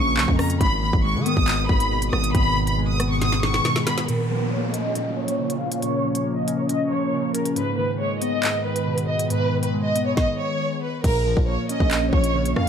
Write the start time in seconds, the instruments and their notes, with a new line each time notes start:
Already playing: 808-style bass A#1, synth keys A#2 C#3 F3 A#3 C#4, ambient pad C#3 A#3 F4 A#4, violin section C#6
0.17 808-style bass B1, synth keys C#3, clap
0.28 808-style bass F2, kick
0.39 synth keys C#4, violin section A#5, cross-stick, open hi-hat
0.50 closed hi-hat
0.60 808-style bass G#1, synth keys G#2, ambient pad D#3 B3 G#4 B4, violin section B5, kick, closed hi-hat
0.82 synth keys D#3, violin section B5
0.93 808-style bass G#1, kick
1.04 synth keys G#3, violin section C#6
1.15 808-style bass D#3
1.26 synth keys B3, violin section D#6, closed hi-hat
1.37 808-style bass G#1, kick
1.48 synth keys G#2, clap, closed hi-hat
1.69 808-style bass G#1, synth keys D#3, violin section B5, kick
1.80 closed hi-hat
1.91 synth keys B2
2.02 closed hi-hat
2.12 808-style bass G#1, synth keys B3, violin section D#6, cross-stick
2.24 closed hi-hat
2.35 808-style bass G#1, synth keys G#2, violin section B5, kick, closed hi-hat
2.56 synth keys D#3
2.67 violin section B5, closed hi-hat
2.78 synth keys G#3
2.89 violin section D#6
3.00 synth keys B3, cross-stick, closed hi-hat
3.10 violin section C#6
3.21 synth keys G#2, violin section D#6, snare, closed hi-hat
3.32 snare
3.43 synth keys D#3, violin section C#6, snare
3.54 snare
3.65 synth keys B2, snare
3.76 snare
3.86 synth keys B3, violin section B5, snare, closed hi-hat
3.98 snare, closed hi-hat
4.08 synth keys A#2, ambient pad C#3 A#3 F4 A#4, violin section A#4, closed hi-hat, downlifter
4.30 synth keys F3, violin section A#4
4.52 synth keys A#3, violin section C#5
4.74 synth keys C#4, violin section D#5, closed hi-hat
4.95 synth keys A#2, closed hi-hat
5.17 synth keys F3, violin section C#5
5.28 closed hi-hat
5.39 synth keys C#3
5.50 closed hi-hat
5.61 synth keys C#4, violin section F5
5.72 closed hi-hat
5.82 synth keys A#2, violin section C#5, closed hi-hat
6.04 synth keys F3
6.15 violin section C#5, closed hi-hat
6.26 synth keys A#3
6.37 violin section D#5
6.48 synth keys C#4, closed hi-hat
6.59 violin section C#5
6.69 synth keys A#2, violin section D#5, closed hi-hat
6.91 synth keys F3, violin section C#5
7.13 synth keys C#3
7.34 synth keys C#4, violin section A#4, closed hi-hat
7.45 closed hi-hat
7.56 synth keys G#2, ambient pad D#3 B3 G#4 B4, violin section B4, closed hi-hat
7.78 synth keys D#3, violin section B4
8.00 synth keys G#3, violin section C#5
8.21 synth keys B3, violin section D#5, closed hi-hat
8.43 synth keys G#2, clap, closed hi-hat
8.64 synth keys D#3, violin section B4
8.76 closed hi-hat
8.86 synth keys B2
8.98 closed hi-hat
9.08 synth keys B3, violin section D#5
9.19 closed hi-hat
9.30 synth keys G#2, violin section B4, closed hi-hat
9.52 synth keys D#3
9.63 violin section B4, closed hi-hat
9.73 synth keys G#3
9.85 violin section D#5
9.95 synth keys B3, closed hi-hat
10.06 violin section C#5
10.17 violin section D#5, kick, snare
10.39 violin section C#5
10.82 violin section B4
11.04 808-style bass A#1, synth keys A#2, violin section A#4, kick, closed hi-hat, crash
11.26 synth keys F3, violin section A#4
11.37 808-style bass A#1, kick
11.47 synth keys A#3, violin section C#5
11.69 synth keys C#4, violin section D#5, closed hi-hat
11.80 808-style bass A#1, kick
11.91 synth keys A#2, clap, closed hi-hat
12.12 808-style bass A#1, synth keys F3, violin section C#5, kick
12.24 closed hi-hat
12.34 synth keys C#3
12.45 closed hi-hat
12.56 808-style bass F2, synth keys C#4, violin section F5, cross-stick